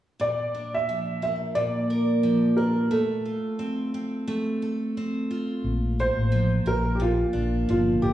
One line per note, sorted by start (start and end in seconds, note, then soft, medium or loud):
0.20 1.54 A#2 medium
0.20 0.74 D5 medium
0.54 2.56 D4 soft
0.74 1.22 E5 medium
0.89 2.23 F3 soft
1.22 3.00 A#3 soft
1.22 1.30 E5 medium
1.55 2.99 A#2 medium
1.55 2.60 D5 medium
1.90 2.99 A#4 soft
2.23 2.90 F3 medium
2.57 2.99 D4 soft
2.57 2.92 A#4 medium
2.91 4.26 A3 medium
2.91 4.24 A4 medium
3.25 5.30 F4 soft
3.59 3.93 C4 medium
3.94 4.96 C4 soft
4.28 5.72 A3 medium
4.62 5.72 A4 soft
4.97 5.72 C4 medium
5.31 7.33 F4 soft
5.64 6.07 A#1 medium
6.00 8.13 A#3 soft
6.00 6.69 C5 medium
6.17 6.57 A1 medium
6.32 7.68 F3 medium
6.66 7.22 A#1 medium
6.66 8.01 A#4 medium
6.66 6.96 A#4 medium
6.95 7.01 G4 medium
7.00 8.13 A#2 medium
7.00 7.69 F4 medium
7.33 7.63 A#1 medium
7.33 8.13 D4 soft
7.68 7.96 G1 medium
7.68 8.13 F3 medium
7.68 8.01 F4 medium
8.02 8.13 G1 medium
8.02 8.13 G4 medium
8.02 8.13 A#4 soft